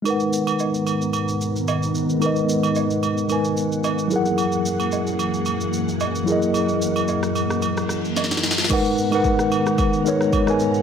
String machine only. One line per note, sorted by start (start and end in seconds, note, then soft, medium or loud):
0.05 4.07 G#2 medium
0.05 4.07 D#3 medium
0.05 4.07 B3 medium
0.05 8.66 F#5 medium
0.05 4.07 A#5 medium
4.11 8.67 F#2 medium
4.11 8.66 E3 medium
4.11 8.67 A#3 medium
4.11 6.25 G#4 medium
6.27 8.68 A#4 medium
8.70 10.82 G#2 medium
8.70 10.82 D#3 medium
8.70 10.82 B3 medium
8.70 10.82 F#5 loud
8.70 10.82 A#5 medium